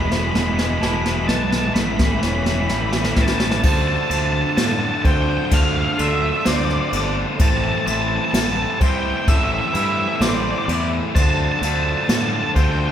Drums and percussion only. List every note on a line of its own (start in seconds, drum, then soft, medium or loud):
0.12 snare medium
0.35 snare loud
0.59 snare loud
0.83 snare loud
1.06 snare loud
1.29 snare loud
1.52 snare loud
1.76 snare loud
1.99 kick medium
1.99 snare loud
2.23 snare loud
2.46 snare loud
2.69 snare loud
2.93 snare loud
3.04 snare loud
3.16 kick medium
3.16 snare loud
3.28 snare loud
3.40 snare loud
3.51 snare loud
3.63 kick loud
3.63 crash loud
4.11 ride medium
4.57 snare loud
4.57 ride loud
5.05 kick medium
5.05 ride medium
5.51 kick loud
5.51 ride loud
5.99 ride medium
6.45 snare loud
6.45 ride loud
6.69 snare soft
6.93 ride medium
7.39 kick loud
7.39 ride loud
7.87 ride medium
8.34 snare loud
8.34 ride loud
8.81 kick medium
8.81 ride loud
9.28 kick loud
9.28 ride loud
9.74 ride medium
10.21 snare loud
10.21 ride loud
10.69 ride medium
11.16 kick loud
11.16 ride loud
11.63 ride medium
12.09 snare loud
12.09 ride loud
12.56 kick loud
12.56 ride medium